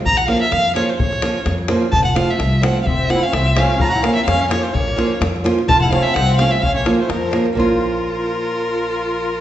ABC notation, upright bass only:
X:1
M:2/4
L:1/8
Q:"Swing 16ths" 1/4=128
K:none
V:1 name="Upright bass" clef=bass
_B,,,2 F,,2 | _B,,,2 F,,2 | F,,,2 C,,2 | F,,,2 C,,2 |
_B,,,2 F,,2 | _B,,,2 F,,2 | F,,,2 C,,2 | _B,,,2 F,,2 |
_B,,,4- | _B,,,4 |]